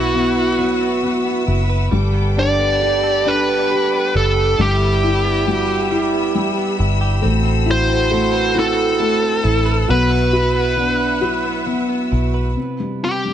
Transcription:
0.00 1.44 B1 loud
0.00 0.57 F#3 medium
0.00 0.14 B3 medium
0.00 0.81 B3 medium
0.00 0.13 E4 medium
0.00 1.21 E4 loud
0.00 1.43 F#4 medium
0.00 0.36 B4 medium
0.00 1.89 B4 medium
0.00 1.89 E5 medium
0.00 1.89 F#5 medium
0.00 1.89 E6 medium
0.14 0.57 B3 medium
0.14 1.02 E4 medium
0.36 1.69 B4 medium
0.58 1.91 F#3 medium
0.58 1.01 B3 soft
0.81 1.25 B3 medium
1.02 1.89 B3 soft
1.02 1.46 E4 medium
1.25 2.13 B3 medium
1.47 1.89 F#1 medium
1.47 2.01 E4 medium
1.47 1.63 F#4 medium
1.70 3.03 B4 medium
1.91 4.10 G1 loud
1.91 3.25 G3 medium
1.91 4.55 G3 medium
1.91 4.55 G4 loud
1.91 4.56 A4 medium
1.91 4.56 G5 medium
1.91 9.84 B5 medium
1.91 4.56 D6 medium
2.13 2.59 B3 medium
2.36 2.80 D4 medium
2.36 3.25 D4 medium
2.36 3.29 D5 loud
2.59 3.48 B3 medium
2.81 3.68 D4 medium
2.81 3.70 G4 medium
3.03 4.35 A4 medium
3.25 4.58 G3 medium
3.25 4.55 D4 soft
3.25 4.16 B4 medium
3.48 3.92 B3 medium
3.70 4.13 D4 medium
3.70 4.57 G4 soft
3.92 4.80 B3 medium
4.14 4.56 F#1 medium
4.14 4.67 D4 medium
4.14 4.61 A4 medium
4.37 4.67 A4 medium
4.57 6.75 G1 loud
4.57 7.19 G3 medium
4.57 5.89 G3 medium
4.57 5.46 G3 medium
4.57 5.47 E4 medium
4.57 7.20 E5 medium
4.57 12.52 E6 medium
4.61 6.76 G4 medium
4.81 5.24 B3 medium
5.03 5.47 E4 medium
5.03 5.90 E4 medium
5.24 6.12 B3 medium
5.47 6.33 G3 medium
5.47 6.35 E4 medium
5.47 5.91 F#4 loud
5.69 7.00 G4 medium
5.90 7.32 G3 medium
5.90 6.96 E4 medium
5.90 7.19 E4 soft
6.13 6.57 B3 medium
6.35 7.20 G3 medium
6.35 6.78 E4 medium
6.57 7.22 B3 medium
6.78 7.21 G1 medium
6.78 7.66 E4 medium
7.01 7.32 G4 medium
7.22 9.40 A1 loud
7.22 8.09 A3 medium
7.22 9.85 C4 medium
7.22 7.44 C4 medium
7.22 9.40 F#4 loud
7.22 9.85 A4 medium
7.45 7.88 C4 medium
7.66 8.53 E4 medium
7.66 8.10 E4 medium
7.71 8.59 C5 loud
7.89 8.53 C4 medium
8.11 8.98 A3 medium
8.11 8.99 E4 medium
8.33 9.65 B4 medium
8.54 8.75 C4 medium
8.54 9.84 E4 medium
8.59 9.90 A4 medium
8.77 9.21 C4 medium
8.99 9.85 A3 medium
8.99 9.43 E4 medium
9.22 9.97 C4 medium
9.43 9.86 A1 medium
9.43 10.33 E4 medium
9.43 9.88 E4 medium
9.66 11.00 B4 medium
9.88 12.08 B1 loud
9.88 11.21 F#3 medium
9.88 10.75 B3 medium
9.88 10.78 F#4 medium
9.88 12.54 B4 medium
9.88 11.64 B4 medium
9.88 12.54 E5 medium
9.88 12.55 F#5 medium
10.11 10.55 B3 medium
10.33 10.76 E4 medium
10.33 11.20 F#4 medium
10.55 11.45 B3 medium
10.77 11.65 B3 medium
10.77 11.22 D4 medium
10.77 11.66 E4 medium
11.00 12.34 B4 medium
11.21 12.66 F#3 medium
11.21 11.85 E4 medium
11.21 12.52 F#4 medium
11.45 11.89 B3 medium
11.66 12.54 B3 medium
11.66 12.11 E4 medium
11.89 13.16 B3 medium
12.12 12.54 B1 medium
12.12 13.16 E4 medium
12.12 12.54 F#4 medium
12.34 13.16 B4 medium
12.56 13.01 C3 soft
12.80 13.24 G3 soft
13.03 13.34 C3 soft
13.03 13.34 G4 medium
13.25 13.34 G3 soft

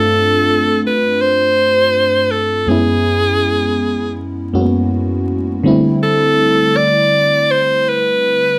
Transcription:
0.00 2.63 G2 medium
0.00 2.64 A3 medium
0.00 2.64 C4 medium
0.00 2.65 D4 medium
0.00 2.68 F4 medium
0.00 0.81 A4 loud
0.87 1.23 B4 medium
1.21 2.33 C5 loud
2.31 2.70 A4 medium
2.67 4.49 F#2 medium
2.67 4.49 G#3 medium
2.67 4.50 B3 medium
2.67 4.50 C#4 medium
2.67 4.16 G#4 medium
2.71 4.51 E4 medium
4.53 5.64 F#2 medium
4.53 5.64 G#3 medium
4.53 4.61 A#3 soft
4.53 5.65 C#4 soft
4.53 5.65 F#4 medium
4.61 5.68 B3 medium
5.63 8.56 D3 medium
5.63 8.56 G3 medium
5.63 8.57 A3 medium
5.63 8.57 C4 medium
5.68 8.58 E4 medium
6.03 6.78 A4 medium
6.76 7.53 D5 loud
7.51 7.90 C5 medium
7.89 8.59 B4 loud

